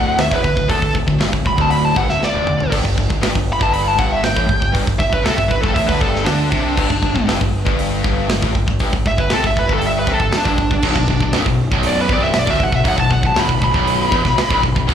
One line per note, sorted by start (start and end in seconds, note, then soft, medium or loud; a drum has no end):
0.00 0.17 D1 loud
0.00 0.18 D2 loud
0.00 0.17 F#5 loud
0.19 0.31 D1 medium
0.19 0.31 D2 medium
0.19 0.32 E5 medium
0.19 snare loud
0.19 open hi-hat medium
0.31 0.43 E1 medium
0.31 0.43 E2 loud
0.31 0.69 B4 medium
0.31 kick loud
0.44 0.56 D1 medium
0.44 0.54 D2 medium
0.44 kick medium
0.56 0.69 D1 medium
0.56 0.67 D2 medium
0.56 kick medium
0.68 0.81 D1 loud
0.68 0.79 D2 loud
0.68 0.94 A4 loud
0.68 kick medium
0.68 open hi-hat medium
0.80 0.94 D1 medium
0.80 0.92 D2 medium
0.80 kick medium
0.93 1.07 D1 medium
0.93 1.05 D2 medium
0.93 kick medium
1.06 1.19 D1 medium
1.06 1.18 D2 medium
1.06 kick medium
1.19 1.32 G1 medium
1.19 1.31 G2 loud
1.19 snare loud
1.19 open hi-hat medium
1.32 1.45 D1 medium
1.32 1.43 D2 medium
1.32 kick medium
1.45 1.57 D1 medium
1.45 1.55 D2 medium
1.45 1.61 B5 loud
1.45 kick medium
1.56 1.93 D1 loud
1.56 1.94 D2 loud
1.56 kick medium
1.61 1.71 A5 medium
1.71 1.85 B5 medium
1.71 open hi-hat medium
1.85 1.96 A5 medium
1.95 2.08 G1 medium
1.95 2.07 G2 loud
1.95 2.09 F#5 medium
1.95 kick loud
2.08 2.21 D1 medium
2.08 2.19 D2 medium
2.08 2.22 E5 medium
2.08 snare soft
2.20 muted distorted electric guitar stroke medium
2.20 muted picked electric bass stroke soft
2.20 snare medium
2.24 2.72 D5 loud
2.33 2.46 D1 medium
2.33 2.46 D2 loud
2.47 2.59 D1 medium
2.47 2.57 D2 medium
2.47 mid tom loud
2.58 2.71 D1 medium
2.58 2.70 D2 medium
2.58 floor tom medium
2.71 2.84 G1 medium
2.71 2.83 G2 loud
2.71 kick loud
2.71 open hi-hat medium
2.71 crash loud
2.85 2.96 G1 medium
2.85 2.96 G2 medium
2.85 kick medium
2.97 3.09 G1 medium
2.97 3.08 G2 medium
2.97 kick medium
3.09 3.22 G1 medium
3.09 3.20 G2 medium
3.09 kick medium
3.21 3.35 G1 medium
3.21 3.32 G2 medium
3.21 snare loud
3.21 open hi-hat medium
3.33 3.59 G1 medium
3.33 3.55 G2 medium
3.33 kick loud
3.53 3.63 B5 loud
3.59 3.96 G1 medium
3.59 3.95 G2 loud
3.59 3.73 A5 medium
3.59 kick loud
3.73 3.88 B5 medium
3.73 open hi-hat medium
3.88 3.99 A5 medium
3.96 4.22 G1 medium
3.96 4.21 G2 loud
3.96 4.12 F#5 medium
3.96 kick loud
4.12 4.23 E5 medium
4.23 4.36 G1 medium
4.23 4.33 G2 medium
4.23 4.73 G5 loud
4.23 snare loud
4.23 open hi-hat medium
4.34 4.48 A1 loud
4.34 4.46 A2 loud
4.34 kick loud
4.46 4.61 G1 medium
4.46 4.59 G2 medium
4.46 kick medium
4.60 4.74 G1 medium
4.60 4.71 G2 medium
4.60 kick medium
4.72 4.86 G1 medium
4.72 4.84 G2 loud
4.72 kick loud
4.72 open hi-hat medium
4.85 4.99 G1 medium
4.85 4.97 G2 medium
4.85 kick medium
4.99 5.12 G1 medium
4.99 5.08 G2 medium
4.99 5.12 E5 medium
4.99 kick medium
5.09 5.24 G1 medium
5.09 5.24 G2 medium
5.09 5.25 B4 medium
5.09 kick medium
5.23 5.37 C2 medium
5.23 5.36 C3 medium
5.23 5.38 A4 medium
5.23 snare loud
5.23 open hi-hat medium
5.36 5.50 G1 medium
5.36 5.48 G2 medium
5.36 5.50 E5 loud
5.36 kick medium
5.48 5.63 G1 medium
5.48 5.61 G2 medium
5.48 5.61 B4 medium
5.48 kick medium
5.61 5.75 G1 loud
5.61 5.74 G2 loud
5.61 5.74 A4 loud
5.61 kick medium
5.74 5.88 A1 medium
5.74 5.87 A2 loud
5.74 5.87 E5 medium
5.74 kick medium
5.74 open hi-hat medium
5.87 6.00 D2 medium
5.87 6.00 D3 loud
5.87 6.01 B4 medium
5.87 kick medium
5.99 6.25 G1 loud
5.99 6.25 G2 loud
5.99 6.26 A4 medium
5.99 kick medium
6.16 snare soft
6.24 6.50 D2 medium
6.24 6.50 D3 loud
6.24 7.24 D4 loud
6.24 snare loud
6.24 open hi-hat medium
6.51 6.76 C2 medium
6.51 6.76 C3 loud
6.51 kick loud
6.77 6.90 G1 loud
6.77 6.88 G2 loud
6.77 kick loud
6.77 crash loud
6.90 7.02 G1 medium
6.90 7.01 G2 medium
6.90 kick medium
7.02 7.15 G1 medium
7.02 7.13 G2 medium
7.02 kick medium
7.14 7.28 G1 medium
7.14 7.26 G2 medium
7.14 kick medium
7.27 7.40 G1 medium
7.27 7.39 G2 loud
7.27 snare loud
7.27 open hi-hat medium
7.40 7.65 G1 medium
7.40 7.61 G2 medium
7.40 kick medium
7.65 8.02 G1 medium
7.65 8.03 G2 loud
7.65 kick medium
7.79 open hi-hat medium
8.04 8.28 G1 medium
8.04 8.27 G2 loud
8.04 kick medium
8.29 8.42 G1 medium
8.29 8.39 G2 medium
8.29 snare loud
8.29 open hi-hat medium
8.40 8.54 A1 medium
8.40 8.53 A2 loud
8.40 kick loud
8.54 8.67 G1 medium
8.54 8.65 G2 medium
8.54 kick medium
8.66 8.79 G1 medium
8.66 8.79 G2 medium
8.66 kick medium
8.79 8.92 G1 medium
8.79 8.91 G2 loud
8.79 kick medium
8.79 open hi-hat medium
8.92 9.05 G1 medium
8.92 9.05 G2 medium
8.92 kick medium
9.06 9.18 G1 medium
9.06 9.16 G2 medium
9.06 9.19 E5 medium
9.06 kick medium
9.17 9.30 G1 medium
9.17 9.31 G2 medium
9.17 9.31 B4 loud
9.17 kick medium
9.30 9.43 C2 medium
9.30 9.43 C3 loud
9.30 9.45 A4 loud
9.30 snare loud
9.30 open hi-hat medium
9.43 9.56 G1 medium
9.43 9.54 G2 medium
9.43 9.58 E5 medium
9.43 kick medium
9.55 9.69 G1 medium
9.55 9.66 G2 medium
9.55 9.70 B4 medium
9.55 kick medium
9.67 10.05 G1 medium
9.67 10.06 G2 loud
9.67 kick medium
9.74 9.84 A4 medium
9.82 open hi-hat medium
9.87 9.97 E5 medium
9.99 10.09 B4 medium
10.05 10.20 C2 loud
10.05 10.19 C3 loud
10.05 kick loud
10.13 10.35 A4 medium
10.19 10.32 G1 medium
10.19 10.30 G2 medium
10.19 kick medium
10.31 muted distorted electric guitar stroke medium
10.31 muted picked electric bass stroke soft
10.31 snare loud
10.31 open hi-hat medium
10.37 11.34 D4 medium
10.44 10.57 G1 loud
10.44 10.56 G2 loud
10.44 kick loud
10.57 10.70 G1 medium
10.57 10.70 G2 medium
10.57 kick medium
10.71 10.82 G1 medium
10.71 10.83 G2 medium
10.71 kick medium
10.82 10.95 B0 loud
10.82 10.95 B1 loud
10.82 kick loud
10.82 crash loud
10.95 11.08 B0 medium
10.95 11.09 B1 medium
10.95 kick medium
11.08 11.20 B0 medium
11.08 11.21 B1 medium
11.08 kick medium
11.20 11.33 B0 medium
11.20 11.34 B1 medium
11.20 kick medium
11.33 11.46 C1 medium
11.33 11.46 C2 loud
11.33 snare loud
11.33 open hi-hat medium
11.46 11.71 B0 medium
11.46 11.68 B1 medium
11.46 kick medium
11.72 12.08 B0 medium
11.72 12.09 B1 loud
11.72 kick medium
11.83 open hi-hat medium
11.87 11.99 D5 loud
12.01 12.12 B4 medium
12.09 12.33 C1 medium
12.09 12.34 C2 loud
12.09 12.23 D5 medium
12.09 kick loud
12.24 12.36 E5 medium
12.33 12.46 B0 medium
12.33 12.47 B1 medium
12.33 snare loud
12.33 open hi-hat medium
12.39 12.50 D5 medium
12.47 12.60 D1 medium
12.47 12.59 D2 loud
12.47 12.62 E5 medium
12.47 kick loud
12.60 12.71 B0 medium
12.60 12.71 B1 medium
12.60 12.75 F#5 medium
12.60 kick medium
12.72 12.85 B0 medium
12.72 12.83 B1 medium
12.72 12.87 E5 medium
12.72 kick medium
12.84 12.98 B0 loud
12.84 12.96 B1 loud
12.84 13.00 F#5 loud
12.84 kick loud
12.84 open hi-hat medium
12.97 13.10 B0 medium
12.97 13.08 B1 medium
12.97 13.12 A5 medium
12.97 kick medium
13.09 13.23 B0 medium
13.09 13.20 B1 medium
13.09 13.26 F#5 medium
13.09 kick medium
13.21 13.36 B0 medium
13.21 13.34 B1 medium
13.21 kick medium
13.26 13.38 A5 medium
13.34 13.48 E1 medium
13.34 13.46 E2 loud
13.34 13.62 B5 loud
13.34 snare loud
13.34 open hi-hat medium
13.47 13.61 B0 medium
13.47 13.58 B1 medium
13.47 kick medium
13.59 13.74 B0 medium
13.59 13.70 B1 medium
13.59 kick medium
13.64 14.62 B5 loud
13.71 14.10 B0 loud
13.71 14.09 B1 loud
13.71 kick medium
13.87 open hi-hat medium
14.10 14.25 E1 medium
14.10 14.23 E2 loud
14.10 kick loud
14.23 14.36 B0 medium
14.23 14.34 B1 medium
14.23 kick medium
14.23 snare soft
14.35 muted distorted electric guitar stroke medium
14.35 muted picked electric bass stroke soft
14.35 snare loud
14.35 open hi-hat medium
14.49 14.62 C1 medium
14.49 14.61 C2 loud
14.49 kick loud
14.62 14.76 B0 medium
14.62 14.74 B1 medium
14.62 kick medium
14.75 14.88 B0 medium
14.75 14.87 B1 medium
14.75 kick medium
14.87 14.94 D1 loud
14.87 14.94 D2 loud
14.87 kick loud
14.87 crash loud